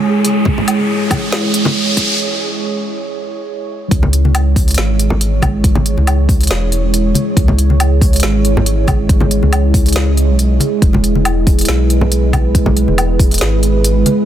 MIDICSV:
0, 0, Header, 1, 6, 480
1, 0, Start_track
1, 0, Key_signature, 4, "minor"
1, 0, Tempo, 431655
1, 513, Time_signature, 4, 2, 24, 8
1, 15848, End_track
2, 0, Start_track
2, 0, Title_t, "Synth texture"
2, 0, Program_c, 0, 99
2, 0, Note_on_c, 0, 68, 93
2, 2433, Note_off_c, 0, 68, 0
2, 15848, End_track
3, 0, Start_track
3, 0, Title_t, "Ambient pad"
3, 0, Program_c, 1, 92
3, 0, Note_on_c, 1, 56, 83
3, 0, Note_on_c, 1, 64, 75
3, 0, Note_on_c, 1, 73, 94
3, 4308, Note_off_c, 1, 56, 0
3, 4308, Note_off_c, 1, 64, 0
3, 4308, Note_off_c, 1, 73, 0
3, 4354, Note_on_c, 1, 56, 85
3, 4354, Note_on_c, 1, 73, 92
3, 4356, Note_on_c, 1, 64, 82
3, 11989, Note_off_c, 1, 73, 0
3, 12031, Note_on_c, 1, 71, 95
3, 15848, Note_off_c, 1, 56, 0
3, 15848, Note_off_c, 1, 64, 0
3, 15848, Note_off_c, 1, 71, 0
3, 15848, End_track
4, 0, Start_track
4, 0, Title_t, "Sub bass"
4, 0, Program_c, 2, 38
4, 0, Note_on_c, 2, 37, 88
4, 498, Note_off_c, 2, 37, 0
4, 511, Note_on_c, 2, 37, 106
4, 1458, Note_off_c, 2, 37, 0
4, 1468, Note_on_c, 2, 32, 89
4, 2431, Note_off_c, 2, 32, 0
4, 4351, Note_on_c, 2, 37, 104
4, 5298, Note_off_c, 2, 37, 0
4, 5310, Note_on_c, 2, 32, 91
4, 6624, Note_off_c, 2, 32, 0
4, 6641, Note_on_c, 2, 37, 89
4, 7227, Note_off_c, 2, 37, 0
4, 7234, Note_on_c, 2, 28, 92
4, 7939, Note_off_c, 2, 28, 0
4, 8191, Note_on_c, 2, 37, 103
4, 9138, Note_off_c, 2, 37, 0
4, 9151, Note_on_c, 2, 32, 91
4, 10465, Note_off_c, 2, 32, 0
4, 10480, Note_on_c, 2, 37, 86
4, 11440, Note_on_c, 2, 35, 103
4, 11457, Note_off_c, 2, 37, 0
4, 11778, Note_off_c, 2, 35, 0
4, 12032, Note_on_c, 2, 28, 103
4, 12978, Note_off_c, 2, 28, 0
4, 12991, Note_on_c, 2, 35, 90
4, 14305, Note_off_c, 2, 35, 0
4, 14323, Note_on_c, 2, 28, 90
4, 14907, Note_off_c, 2, 28, 0
4, 14914, Note_on_c, 2, 32, 90
4, 15619, Note_off_c, 2, 32, 0
4, 15848, End_track
5, 0, Start_track
5, 0, Title_t, "Riser"
5, 0, Program_c, 3, 103
5, 0, Note_on_c, 3, 60, 80
5, 2433, Note_off_c, 3, 60, 0
5, 15848, End_track
6, 0, Start_track
6, 0, Title_t, "Drums"
6, 273, Note_on_c, 9, 42, 83
6, 385, Note_off_c, 9, 42, 0
6, 503, Note_on_c, 9, 63, 96
6, 511, Note_on_c, 9, 36, 127
6, 614, Note_off_c, 9, 63, 0
6, 622, Note_off_c, 9, 36, 0
6, 643, Note_on_c, 9, 64, 81
6, 753, Note_on_c, 9, 42, 79
6, 753, Note_on_c, 9, 77, 48
6, 755, Note_off_c, 9, 64, 0
6, 865, Note_off_c, 9, 42, 0
6, 865, Note_off_c, 9, 77, 0
6, 1231, Note_on_c, 9, 36, 118
6, 1231, Note_on_c, 9, 63, 65
6, 1233, Note_on_c, 9, 42, 81
6, 1233, Note_on_c, 9, 77, 77
6, 1342, Note_off_c, 9, 36, 0
6, 1342, Note_off_c, 9, 63, 0
6, 1344, Note_off_c, 9, 42, 0
6, 1344, Note_off_c, 9, 77, 0
6, 1473, Note_on_c, 9, 38, 127
6, 1584, Note_off_c, 9, 38, 0
6, 1712, Note_on_c, 9, 42, 78
6, 1823, Note_off_c, 9, 42, 0
6, 1836, Note_on_c, 9, 63, 102
6, 1846, Note_on_c, 9, 64, 91
6, 1948, Note_off_c, 9, 63, 0
6, 1958, Note_off_c, 9, 64, 0
6, 2191, Note_on_c, 9, 36, 67
6, 2192, Note_on_c, 9, 42, 81
6, 2302, Note_off_c, 9, 36, 0
6, 2303, Note_off_c, 9, 42, 0
6, 4352, Note_on_c, 9, 36, 117
6, 4354, Note_on_c, 9, 42, 82
6, 4463, Note_off_c, 9, 36, 0
6, 4465, Note_off_c, 9, 42, 0
6, 4477, Note_on_c, 9, 64, 88
6, 4485, Note_on_c, 9, 63, 64
6, 4588, Note_off_c, 9, 64, 0
6, 4594, Note_on_c, 9, 42, 55
6, 4596, Note_off_c, 9, 63, 0
6, 4705, Note_off_c, 9, 42, 0
6, 4725, Note_on_c, 9, 63, 66
6, 4834, Note_on_c, 9, 42, 88
6, 4834, Note_on_c, 9, 77, 78
6, 4836, Note_off_c, 9, 63, 0
6, 4945, Note_off_c, 9, 42, 0
6, 4945, Note_off_c, 9, 77, 0
6, 5072, Note_on_c, 9, 36, 109
6, 5074, Note_on_c, 9, 46, 101
6, 5183, Note_off_c, 9, 36, 0
6, 5185, Note_off_c, 9, 46, 0
6, 5203, Note_on_c, 9, 42, 51
6, 5234, Note_off_c, 9, 42, 0
6, 5234, Note_on_c, 9, 42, 69
6, 5276, Note_off_c, 9, 42, 0
6, 5276, Note_on_c, 9, 42, 87
6, 5313, Note_off_c, 9, 42, 0
6, 5313, Note_on_c, 9, 38, 127
6, 5313, Note_on_c, 9, 42, 92
6, 5424, Note_off_c, 9, 38, 0
6, 5424, Note_off_c, 9, 42, 0
6, 5554, Note_on_c, 9, 42, 55
6, 5665, Note_off_c, 9, 42, 0
6, 5675, Note_on_c, 9, 64, 96
6, 5786, Note_off_c, 9, 64, 0
6, 5793, Note_on_c, 9, 42, 82
6, 5904, Note_off_c, 9, 42, 0
6, 6028, Note_on_c, 9, 63, 74
6, 6032, Note_on_c, 9, 36, 62
6, 6033, Note_on_c, 9, 42, 54
6, 6033, Note_on_c, 9, 77, 82
6, 6139, Note_off_c, 9, 63, 0
6, 6143, Note_off_c, 9, 36, 0
6, 6144, Note_off_c, 9, 42, 0
6, 6144, Note_off_c, 9, 77, 0
6, 6272, Note_on_c, 9, 36, 127
6, 6273, Note_on_c, 9, 42, 83
6, 6384, Note_off_c, 9, 36, 0
6, 6384, Note_off_c, 9, 42, 0
6, 6398, Note_on_c, 9, 64, 94
6, 6408, Note_on_c, 9, 63, 62
6, 6509, Note_off_c, 9, 64, 0
6, 6514, Note_on_c, 9, 42, 54
6, 6519, Note_off_c, 9, 63, 0
6, 6625, Note_off_c, 9, 42, 0
6, 6644, Note_on_c, 9, 63, 66
6, 6754, Note_on_c, 9, 42, 85
6, 6754, Note_on_c, 9, 77, 81
6, 6756, Note_off_c, 9, 63, 0
6, 6865, Note_off_c, 9, 42, 0
6, 6865, Note_off_c, 9, 77, 0
6, 6992, Note_on_c, 9, 36, 113
6, 6995, Note_on_c, 9, 46, 94
6, 7104, Note_off_c, 9, 36, 0
6, 7106, Note_off_c, 9, 46, 0
6, 7124, Note_on_c, 9, 42, 51
6, 7154, Note_off_c, 9, 42, 0
6, 7154, Note_on_c, 9, 42, 67
6, 7198, Note_off_c, 9, 42, 0
6, 7198, Note_on_c, 9, 42, 84
6, 7235, Note_off_c, 9, 42, 0
6, 7235, Note_on_c, 9, 38, 127
6, 7235, Note_on_c, 9, 42, 88
6, 7346, Note_off_c, 9, 38, 0
6, 7346, Note_off_c, 9, 42, 0
6, 7474, Note_on_c, 9, 42, 53
6, 7585, Note_off_c, 9, 42, 0
6, 7714, Note_on_c, 9, 42, 84
6, 7825, Note_off_c, 9, 42, 0
6, 7946, Note_on_c, 9, 63, 65
6, 7955, Note_on_c, 9, 42, 54
6, 8057, Note_off_c, 9, 63, 0
6, 8066, Note_off_c, 9, 42, 0
6, 8192, Note_on_c, 9, 36, 127
6, 8194, Note_on_c, 9, 42, 83
6, 8303, Note_off_c, 9, 36, 0
6, 8305, Note_off_c, 9, 42, 0
6, 8319, Note_on_c, 9, 64, 83
6, 8331, Note_on_c, 9, 63, 63
6, 8430, Note_off_c, 9, 64, 0
6, 8435, Note_on_c, 9, 42, 53
6, 8442, Note_off_c, 9, 63, 0
6, 8546, Note_off_c, 9, 42, 0
6, 8563, Note_on_c, 9, 63, 69
6, 8674, Note_off_c, 9, 63, 0
6, 8674, Note_on_c, 9, 42, 80
6, 8674, Note_on_c, 9, 77, 74
6, 8786, Note_off_c, 9, 42, 0
6, 8786, Note_off_c, 9, 77, 0
6, 8912, Note_on_c, 9, 36, 113
6, 8914, Note_on_c, 9, 46, 91
6, 9023, Note_off_c, 9, 36, 0
6, 9025, Note_off_c, 9, 46, 0
6, 9043, Note_on_c, 9, 42, 48
6, 9074, Note_off_c, 9, 42, 0
6, 9074, Note_on_c, 9, 42, 65
6, 9116, Note_off_c, 9, 42, 0
6, 9116, Note_on_c, 9, 42, 84
6, 9152, Note_on_c, 9, 38, 127
6, 9227, Note_off_c, 9, 42, 0
6, 9263, Note_off_c, 9, 38, 0
6, 9393, Note_on_c, 9, 42, 56
6, 9504, Note_off_c, 9, 42, 0
6, 9530, Note_on_c, 9, 64, 101
6, 9634, Note_on_c, 9, 42, 80
6, 9641, Note_off_c, 9, 64, 0
6, 9745, Note_off_c, 9, 42, 0
6, 9868, Note_on_c, 9, 63, 67
6, 9872, Note_on_c, 9, 36, 66
6, 9873, Note_on_c, 9, 42, 55
6, 9873, Note_on_c, 9, 77, 73
6, 9979, Note_off_c, 9, 63, 0
6, 9983, Note_off_c, 9, 36, 0
6, 9984, Note_off_c, 9, 42, 0
6, 9984, Note_off_c, 9, 77, 0
6, 10112, Note_on_c, 9, 36, 126
6, 10112, Note_on_c, 9, 42, 77
6, 10223, Note_off_c, 9, 36, 0
6, 10224, Note_off_c, 9, 42, 0
6, 10235, Note_on_c, 9, 64, 86
6, 10245, Note_on_c, 9, 63, 64
6, 10346, Note_off_c, 9, 64, 0
6, 10353, Note_on_c, 9, 42, 52
6, 10357, Note_off_c, 9, 63, 0
6, 10464, Note_off_c, 9, 42, 0
6, 10482, Note_on_c, 9, 63, 67
6, 10593, Note_off_c, 9, 63, 0
6, 10593, Note_on_c, 9, 42, 79
6, 10593, Note_on_c, 9, 77, 80
6, 10704, Note_off_c, 9, 42, 0
6, 10704, Note_off_c, 9, 77, 0
6, 10832, Note_on_c, 9, 36, 117
6, 10833, Note_on_c, 9, 46, 89
6, 10943, Note_off_c, 9, 36, 0
6, 10944, Note_off_c, 9, 46, 0
6, 10963, Note_on_c, 9, 42, 49
6, 10992, Note_off_c, 9, 42, 0
6, 10992, Note_on_c, 9, 42, 64
6, 11037, Note_off_c, 9, 42, 0
6, 11037, Note_on_c, 9, 42, 76
6, 11073, Note_off_c, 9, 42, 0
6, 11073, Note_on_c, 9, 38, 127
6, 11073, Note_on_c, 9, 42, 86
6, 11184, Note_off_c, 9, 38, 0
6, 11184, Note_off_c, 9, 42, 0
6, 11313, Note_on_c, 9, 42, 50
6, 11425, Note_off_c, 9, 42, 0
6, 11553, Note_on_c, 9, 42, 80
6, 11665, Note_off_c, 9, 42, 0
6, 11788, Note_on_c, 9, 63, 66
6, 11794, Note_on_c, 9, 42, 53
6, 11899, Note_off_c, 9, 63, 0
6, 11906, Note_off_c, 9, 42, 0
6, 12032, Note_on_c, 9, 36, 121
6, 12033, Note_on_c, 9, 42, 76
6, 12144, Note_off_c, 9, 36, 0
6, 12145, Note_off_c, 9, 42, 0
6, 12156, Note_on_c, 9, 63, 65
6, 12169, Note_on_c, 9, 64, 85
6, 12268, Note_off_c, 9, 63, 0
6, 12274, Note_on_c, 9, 42, 48
6, 12280, Note_off_c, 9, 64, 0
6, 12385, Note_off_c, 9, 42, 0
6, 12403, Note_on_c, 9, 63, 68
6, 12513, Note_on_c, 9, 42, 76
6, 12513, Note_on_c, 9, 77, 83
6, 12515, Note_off_c, 9, 63, 0
6, 12624, Note_off_c, 9, 42, 0
6, 12624, Note_off_c, 9, 77, 0
6, 12753, Note_on_c, 9, 36, 110
6, 12753, Note_on_c, 9, 46, 88
6, 12864, Note_off_c, 9, 36, 0
6, 12864, Note_off_c, 9, 46, 0
6, 12884, Note_on_c, 9, 42, 48
6, 12913, Note_off_c, 9, 42, 0
6, 12913, Note_on_c, 9, 42, 61
6, 12957, Note_off_c, 9, 42, 0
6, 12957, Note_on_c, 9, 42, 76
6, 12994, Note_on_c, 9, 38, 125
6, 13068, Note_off_c, 9, 42, 0
6, 13105, Note_off_c, 9, 38, 0
6, 13234, Note_on_c, 9, 42, 50
6, 13345, Note_off_c, 9, 42, 0
6, 13359, Note_on_c, 9, 64, 88
6, 13470, Note_off_c, 9, 64, 0
6, 13474, Note_on_c, 9, 42, 76
6, 13585, Note_off_c, 9, 42, 0
6, 13713, Note_on_c, 9, 36, 62
6, 13713, Note_on_c, 9, 63, 61
6, 13715, Note_on_c, 9, 42, 51
6, 13715, Note_on_c, 9, 77, 78
6, 13824, Note_off_c, 9, 36, 0
6, 13824, Note_off_c, 9, 63, 0
6, 13826, Note_off_c, 9, 42, 0
6, 13826, Note_off_c, 9, 77, 0
6, 13953, Note_on_c, 9, 36, 121
6, 13954, Note_on_c, 9, 42, 77
6, 14064, Note_off_c, 9, 36, 0
6, 14065, Note_off_c, 9, 42, 0
6, 14078, Note_on_c, 9, 64, 91
6, 14081, Note_on_c, 9, 63, 65
6, 14189, Note_off_c, 9, 64, 0
6, 14192, Note_off_c, 9, 63, 0
6, 14196, Note_on_c, 9, 42, 49
6, 14307, Note_off_c, 9, 42, 0
6, 14322, Note_on_c, 9, 63, 60
6, 14433, Note_off_c, 9, 63, 0
6, 14435, Note_on_c, 9, 42, 75
6, 14435, Note_on_c, 9, 77, 86
6, 14546, Note_off_c, 9, 42, 0
6, 14546, Note_off_c, 9, 77, 0
6, 14673, Note_on_c, 9, 36, 107
6, 14674, Note_on_c, 9, 46, 96
6, 14784, Note_off_c, 9, 36, 0
6, 14785, Note_off_c, 9, 46, 0
6, 14805, Note_on_c, 9, 42, 47
6, 14836, Note_off_c, 9, 42, 0
6, 14836, Note_on_c, 9, 42, 64
6, 14878, Note_off_c, 9, 42, 0
6, 14878, Note_on_c, 9, 42, 77
6, 14914, Note_off_c, 9, 42, 0
6, 14914, Note_on_c, 9, 38, 120
6, 14914, Note_on_c, 9, 42, 79
6, 15025, Note_off_c, 9, 38, 0
6, 15025, Note_off_c, 9, 42, 0
6, 15155, Note_on_c, 9, 42, 51
6, 15266, Note_off_c, 9, 42, 0
6, 15395, Note_on_c, 9, 42, 75
6, 15506, Note_off_c, 9, 42, 0
6, 15634, Note_on_c, 9, 42, 52
6, 15635, Note_on_c, 9, 63, 70
6, 15746, Note_off_c, 9, 42, 0
6, 15746, Note_off_c, 9, 63, 0
6, 15848, End_track
0, 0, End_of_file